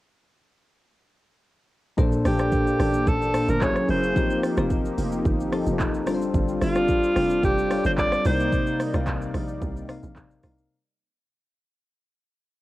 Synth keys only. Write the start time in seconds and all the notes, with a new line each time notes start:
1.97 A#2 A#3 D4 A4 C5
2.39 A#2 A#3 D4 A4 D5
2.79 A#2 A#3 D4 A4 D5
3.34 A#2 A#3 D4 A4 C5
3.61 F#3 C#4 E4 G#4 A4
3.69 A#4
4.15 F3 C4 D#4 G4 A#4
4.57 F3 C4 D#4 G4 A#4
5.52 F3 C4 D#4 G4 A4
6.06 G3 D4 F4 A4 A#4
6.14 C5
6.75 G3 D4 F4 A4 D5
7.15 G3 D4 F4 A4 D5
7.70 G3 D4 F4 A4 C#5
7.78 D5
8.25 C3 C4 D#4 A#4 D5
8.93 C3 C4 D#4 A#4 F5
9.89 C3 C4 D#4 A#4 F5
10.43 C3 C4 D#4 A#4 F5